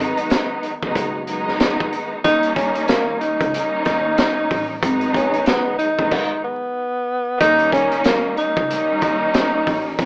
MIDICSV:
0, 0, Header, 1, 5, 480
1, 0, Start_track
1, 0, Tempo, 645161
1, 1670, Time_signature, 4, 2, 24, 8
1, 7479, End_track
2, 0, Start_track
2, 0, Title_t, "Tenor saxophone"
2, 0, Program_c, 0, 66
2, 1667, Note_on_c, 0, 63, 110
2, 1884, Note_off_c, 0, 63, 0
2, 1904, Note_on_c, 0, 61, 76
2, 2123, Note_off_c, 0, 61, 0
2, 2147, Note_on_c, 0, 58, 90
2, 2364, Note_off_c, 0, 58, 0
2, 2385, Note_on_c, 0, 63, 84
2, 2839, Note_off_c, 0, 63, 0
2, 2864, Note_on_c, 0, 63, 90
2, 3558, Note_off_c, 0, 63, 0
2, 3835, Note_on_c, 0, 61, 84
2, 4049, Note_off_c, 0, 61, 0
2, 4071, Note_on_c, 0, 59, 88
2, 4286, Note_off_c, 0, 59, 0
2, 4303, Note_on_c, 0, 63, 89
2, 4758, Note_off_c, 0, 63, 0
2, 4792, Note_on_c, 0, 59, 84
2, 5481, Note_off_c, 0, 59, 0
2, 5507, Note_on_c, 0, 63, 116
2, 5724, Note_off_c, 0, 63, 0
2, 5750, Note_on_c, 0, 61, 81
2, 5966, Note_off_c, 0, 61, 0
2, 5998, Note_on_c, 0, 58, 84
2, 6210, Note_off_c, 0, 58, 0
2, 6235, Note_on_c, 0, 63, 88
2, 6684, Note_off_c, 0, 63, 0
2, 6712, Note_on_c, 0, 63, 89
2, 7401, Note_off_c, 0, 63, 0
2, 7479, End_track
3, 0, Start_track
3, 0, Title_t, "String section"
3, 0, Program_c, 1, 48
3, 0, Note_on_c, 1, 51, 105
3, 0, Note_on_c, 1, 54, 94
3, 0, Note_on_c, 1, 56, 89
3, 0, Note_on_c, 1, 59, 101
3, 0, Note_on_c, 1, 63, 123
3, 532, Note_off_c, 1, 51, 0
3, 533, Note_off_c, 1, 54, 0
3, 534, Note_off_c, 1, 56, 0
3, 535, Note_off_c, 1, 59, 0
3, 536, Note_off_c, 1, 63, 0
3, 616, Note_on_c, 1, 51, 102
3, 618, Note_on_c, 1, 54, 86
3, 621, Note_on_c, 1, 56, 87
3, 622, Note_on_c, 1, 59, 94
3, 624, Note_on_c, 1, 63, 104
3, 927, Note_off_c, 1, 51, 0
3, 928, Note_off_c, 1, 54, 0
3, 929, Note_off_c, 1, 56, 0
3, 930, Note_off_c, 1, 59, 0
3, 931, Note_off_c, 1, 63, 0
3, 949, Note_on_c, 1, 51, 103
3, 951, Note_on_c, 1, 54, 95
3, 953, Note_on_c, 1, 56, 97
3, 955, Note_on_c, 1, 59, 97
3, 957, Note_on_c, 1, 63, 126
3, 1626, Note_off_c, 1, 51, 0
3, 1627, Note_off_c, 1, 54, 0
3, 1628, Note_off_c, 1, 56, 0
3, 1629, Note_off_c, 1, 59, 0
3, 1630, Note_off_c, 1, 63, 0
3, 1660, Note_on_c, 1, 51, 111
3, 1663, Note_on_c, 1, 55, 98
3, 1665, Note_on_c, 1, 58, 98
3, 1666, Note_on_c, 1, 61, 99
3, 1669, Note_on_c, 1, 63, 119
3, 2567, Note_off_c, 1, 51, 0
3, 2568, Note_off_c, 1, 55, 0
3, 2569, Note_off_c, 1, 58, 0
3, 2570, Note_off_c, 1, 61, 0
3, 2571, Note_off_c, 1, 63, 0
3, 2624, Note_on_c, 1, 51, 107
3, 2626, Note_on_c, 1, 55, 101
3, 2628, Note_on_c, 1, 58, 98
3, 2631, Note_on_c, 1, 61, 97
3, 2633, Note_on_c, 1, 63, 124
3, 3529, Note_off_c, 1, 51, 0
3, 3530, Note_off_c, 1, 55, 0
3, 3531, Note_off_c, 1, 58, 0
3, 3532, Note_off_c, 1, 61, 0
3, 3533, Note_off_c, 1, 63, 0
3, 3583, Note_on_c, 1, 51, 102
3, 3586, Note_on_c, 1, 54, 94
3, 3587, Note_on_c, 1, 56, 92
3, 3590, Note_on_c, 1, 59, 101
3, 3591, Note_on_c, 1, 63, 126
3, 4372, Note_off_c, 1, 51, 0
3, 4373, Note_off_c, 1, 54, 0
3, 4374, Note_off_c, 1, 56, 0
3, 4376, Note_off_c, 1, 59, 0
3, 4376, Note_off_c, 1, 63, 0
3, 4456, Note_on_c, 1, 51, 98
3, 4457, Note_on_c, 1, 54, 90
3, 4460, Note_on_c, 1, 56, 89
3, 4462, Note_on_c, 1, 59, 90
3, 4464, Note_on_c, 1, 63, 102
3, 4767, Note_off_c, 1, 51, 0
3, 4767, Note_off_c, 1, 54, 0
3, 4769, Note_off_c, 1, 56, 0
3, 4770, Note_off_c, 1, 59, 0
3, 4771, Note_off_c, 1, 63, 0
3, 5499, Note_on_c, 1, 51, 106
3, 5501, Note_on_c, 1, 55, 104
3, 5504, Note_on_c, 1, 58, 101
3, 5505, Note_on_c, 1, 61, 101
3, 5507, Note_on_c, 1, 63, 115
3, 6406, Note_off_c, 1, 51, 0
3, 6407, Note_off_c, 1, 55, 0
3, 6409, Note_off_c, 1, 58, 0
3, 6409, Note_off_c, 1, 61, 0
3, 6411, Note_off_c, 1, 63, 0
3, 6463, Note_on_c, 1, 51, 110
3, 6466, Note_on_c, 1, 55, 105
3, 6467, Note_on_c, 1, 58, 99
3, 6469, Note_on_c, 1, 61, 96
3, 6471, Note_on_c, 1, 63, 127
3, 7368, Note_off_c, 1, 51, 0
3, 7370, Note_off_c, 1, 55, 0
3, 7370, Note_off_c, 1, 58, 0
3, 7371, Note_off_c, 1, 61, 0
3, 7372, Note_off_c, 1, 63, 0
3, 7424, Note_on_c, 1, 51, 109
3, 7426, Note_on_c, 1, 54, 98
3, 7428, Note_on_c, 1, 56, 92
3, 7430, Note_on_c, 1, 59, 102
3, 7432, Note_on_c, 1, 63, 127
3, 7479, Note_off_c, 1, 51, 0
3, 7479, Note_off_c, 1, 54, 0
3, 7479, Note_off_c, 1, 56, 0
3, 7479, Note_off_c, 1, 59, 0
3, 7479, Note_off_c, 1, 63, 0
3, 7479, End_track
4, 0, Start_track
4, 0, Title_t, "Upright bass"
4, 0, Program_c, 2, 32
4, 0, Note_on_c, 2, 32, 110
4, 76, Note_off_c, 2, 32, 0
4, 616, Note_on_c, 2, 30, 92
4, 1308, Note_off_c, 2, 30, 0
4, 1672, Note_on_c, 2, 39, 109
4, 1996, Note_off_c, 2, 39, 0
4, 2535, Note_on_c, 2, 37, 87
4, 2613, Note_off_c, 2, 37, 0
4, 2873, Note_on_c, 2, 39, 92
4, 3072, Note_off_c, 2, 39, 0
4, 3356, Note_on_c, 2, 33, 100
4, 3554, Note_off_c, 2, 33, 0
4, 3593, Note_on_c, 2, 32, 106
4, 3916, Note_off_c, 2, 32, 0
4, 4456, Note_on_c, 2, 30, 92
4, 4544, Note_off_c, 2, 30, 0
4, 5513, Note_on_c, 2, 39, 107
4, 5836, Note_off_c, 2, 39, 0
4, 6376, Note_on_c, 2, 37, 90
4, 6453, Note_off_c, 2, 37, 0
4, 6713, Note_on_c, 2, 39, 95
4, 6912, Note_off_c, 2, 39, 0
4, 7196, Note_on_c, 2, 33, 103
4, 7394, Note_off_c, 2, 33, 0
4, 7433, Note_on_c, 2, 32, 111
4, 7479, Note_off_c, 2, 32, 0
4, 7479, End_track
5, 0, Start_track
5, 0, Title_t, "Drums"
5, 1, Note_on_c, 9, 42, 79
5, 75, Note_off_c, 9, 42, 0
5, 129, Note_on_c, 9, 42, 60
5, 204, Note_off_c, 9, 42, 0
5, 224, Note_on_c, 9, 42, 98
5, 233, Note_on_c, 9, 37, 87
5, 234, Note_on_c, 9, 38, 111
5, 298, Note_off_c, 9, 42, 0
5, 307, Note_off_c, 9, 37, 0
5, 308, Note_off_c, 9, 38, 0
5, 469, Note_on_c, 9, 42, 71
5, 544, Note_off_c, 9, 42, 0
5, 614, Note_on_c, 9, 36, 100
5, 688, Note_off_c, 9, 36, 0
5, 710, Note_on_c, 9, 36, 96
5, 716, Note_on_c, 9, 42, 97
5, 785, Note_off_c, 9, 36, 0
5, 790, Note_off_c, 9, 42, 0
5, 947, Note_on_c, 9, 42, 80
5, 1021, Note_off_c, 9, 42, 0
5, 1103, Note_on_c, 9, 38, 42
5, 1177, Note_off_c, 9, 38, 0
5, 1190, Note_on_c, 9, 42, 94
5, 1194, Note_on_c, 9, 37, 102
5, 1194, Note_on_c, 9, 38, 123
5, 1264, Note_off_c, 9, 42, 0
5, 1268, Note_off_c, 9, 37, 0
5, 1269, Note_off_c, 9, 38, 0
5, 1342, Note_on_c, 9, 36, 94
5, 1416, Note_off_c, 9, 36, 0
5, 1433, Note_on_c, 9, 42, 68
5, 1507, Note_off_c, 9, 42, 0
5, 1669, Note_on_c, 9, 42, 93
5, 1670, Note_on_c, 9, 36, 124
5, 1744, Note_off_c, 9, 42, 0
5, 1745, Note_off_c, 9, 36, 0
5, 1806, Note_on_c, 9, 42, 55
5, 1881, Note_off_c, 9, 42, 0
5, 1906, Note_on_c, 9, 36, 98
5, 1919, Note_on_c, 9, 42, 79
5, 1981, Note_off_c, 9, 36, 0
5, 1994, Note_off_c, 9, 42, 0
5, 2048, Note_on_c, 9, 42, 58
5, 2123, Note_off_c, 9, 42, 0
5, 2142, Note_on_c, 9, 42, 98
5, 2152, Note_on_c, 9, 37, 89
5, 2152, Note_on_c, 9, 38, 112
5, 2217, Note_off_c, 9, 42, 0
5, 2226, Note_off_c, 9, 37, 0
5, 2227, Note_off_c, 9, 38, 0
5, 2389, Note_on_c, 9, 42, 71
5, 2463, Note_off_c, 9, 42, 0
5, 2534, Note_on_c, 9, 36, 103
5, 2540, Note_on_c, 9, 42, 57
5, 2608, Note_off_c, 9, 36, 0
5, 2614, Note_off_c, 9, 42, 0
5, 2635, Note_on_c, 9, 42, 95
5, 2709, Note_off_c, 9, 42, 0
5, 2866, Note_on_c, 9, 42, 74
5, 2871, Note_on_c, 9, 36, 99
5, 2872, Note_on_c, 9, 38, 40
5, 2940, Note_off_c, 9, 42, 0
5, 2946, Note_off_c, 9, 36, 0
5, 2947, Note_off_c, 9, 38, 0
5, 3109, Note_on_c, 9, 42, 92
5, 3113, Note_on_c, 9, 37, 99
5, 3114, Note_on_c, 9, 38, 127
5, 3184, Note_off_c, 9, 42, 0
5, 3187, Note_off_c, 9, 37, 0
5, 3188, Note_off_c, 9, 38, 0
5, 3352, Note_on_c, 9, 46, 50
5, 3354, Note_on_c, 9, 36, 101
5, 3426, Note_off_c, 9, 46, 0
5, 3428, Note_off_c, 9, 36, 0
5, 3589, Note_on_c, 9, 42, 95
5, 3591, Note_on_c, 9, 36, 126
5, 3664, Note_off_c, 9, 42, 0
5, 3665, Note_off_c, 9, 36, 0
5, 3727, Note_on_c, 9, 42, 56
5, 3802, Note_off_c, 9, 42, 0
5, 3827, Note_on_c, 9, 36, 98
5, 3840, Note_on_c, 9, 42, 82
5, 3901, Note_off_c, 9, 36, 0
5, 3915, Note_off_c, 9, 42, 0
5, 3970, Note_on_c, 9, 42, 58
5, 4044, Note_off_c, 9, 42, 0
5, 4063, Note_on_c, 9, 42, 98
5, 4072, Note_on_c, 9, 37, 88
5, 4073, Note_on_c, 9, 38, 114
5, 4137, Note_off_c, 9, 42, 0
5, 4147, Note_off_c, 9, 37, 0
5, 4147, Note_off_c, 9, 38, 0
5, 4309, Note_on_c, 9, 42, 74
5, 4384, Note_off_c, 9, 42, 0
5, 4454, Note_on_c, 9, 36, 103
5, 4528, Note_off_c, 9, 36, 0
5, 4550, Note_on_c, 9, 36, 116
5, 4550, Note_on_c, 9, 49, 98
5, 4624, Note_off_c, 9, 36, 0
5, 4624, Note_off_c, 9, 49, 0
5, 5509, Note_on_c, 9, 42, 93
5, 5511, Note_on_c, 9, 36, 126
5, 5584, Note_off_c, 9, 42, 0
5, 5585, Note_off_c, 9, 36, 0
5, 5647, Note_on_c, 9, 42, 54
5, 5721, Note_off_c, 9, 42, 0
5, 5747, Note_on_c, 9, 36, 99
5, 5761, Note_on_c, 9, 42, 81
5, 5821, Note_off_c, 9, 36, 0
5, 5835, Note_off_c, 9, 42, 0
5, 5890, Note_on_c, 9, 42, 60
5, 5964, Note_off_c, 9, 42, 0
5, 5983, Note_on_c, 9, 42, 97
5, 5993, Note_on_c, 9, 37, 92
5, 5993, Note_on_c, 9, 38, 112
5, 6058, Note_off_c, 9, 42, 0
5, 6067, Note_off_c, 9, 37, 0
5, 6068, Note_off_c, 9, 38, 0
5, 6229, Note_on_c, 9, 42, 75
5, 6303, Note_off_c, 9, 42, 0
5, 6374, Note_on_c, 9, 36, 106
5, 6448, Note_off_c, 9, 36, 0
5, 6476, Note_on_c, 9, 42, 97
5, 6550, Note_off_c, 9, 42, 0
5, 6706, Note_on_c, 9, 42, 79
5, 6711, Note_on_c, 9, 36, 99
5, 6781, Note_off_c, 9, 42, 0
5, 6786, Note_off_c, 9, 36, 0
5, 6950, Note_on_c, 9, 42, 91
5, 6954, Note_on_c, 9, 37, 104
5, 6955, Note_on_c, 9, 38, 126
5, 7024, Note_off_c, 9, 42, 0
5, 7028, Note_off_c, 9, 37, 0
5, 7029, Note_off_c, 9, 38, 0
5, 7193, Note_on_c, 9, 46, 51
5, 7194, Note_on_c, 9, 36, 103
5, 7267, Note_off_c, 9, 46, 0
5, 7269, Note_off_c, 9, 36, 0
5, 7430, Note_on_c, 9, 42, 97
5, 7431, Note_on_c, 9, 36, 127
5, 7479, Note_off_c, 9, 36, 0
5, 7479, Note_off_c, 9, 42, 0
5, 7479, End_track
0, 0, End_of_file